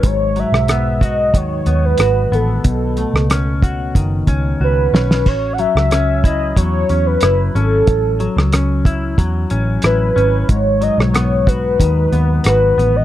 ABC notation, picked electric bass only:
X:1
M:4/4
L:1/16
Q:1/4=92
K:Alyd
V:1 name="Picked electric bass" clef=bass
G,,,3 B,,,4- B,,, D,,2 D,,2 G,,,2 A,,,2 | B,,,3 C,,4- C,, F,,,2 C,,2 C,,2 B,,,2 | A,,,3 C,,4- C,, E,,2 E,,2 F,,,2 G,,,2 | A,,,3 C,,4- C,, E,,2 A,,,2 A,,,2 G,,,2 |
G,,,3 B,,,4- B,,, D,,2 D,,2 G,,,2 A,,,2 |]